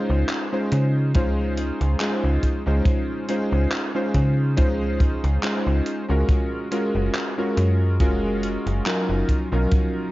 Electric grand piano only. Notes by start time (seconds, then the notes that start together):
Already playing: G#3 C#4 D#4 F4 C5
0.52 G#3 C#4 D#4 F4 C5
1.14 G#3 C#4 D#4 F4 C5
2.00 G#3 C#4 D#4 F4 C5
2.66 G#3 C#4 D#4 F4 C5
3.28 G#3 C#4 D#4 F4 C5
3.94 G#3 C#4 D#4 F4 C5
4.56 G#3 C#4 D#4 F4 C5
5.42 G#3 C#4 D#4 F4 C5
6.09 G#3 C#4 F4 F#4 A#4
6.71 G#3 C#4 F4 F#4 A#4
7.37 G#3 C#4 F4 F#4 A#4
8.00 G#3 C#4 F4 F#4 A#4
8.85 F#3 C#4 D#4 F4 A#4
9.52 F#3 C#4 D#4 F4 A#4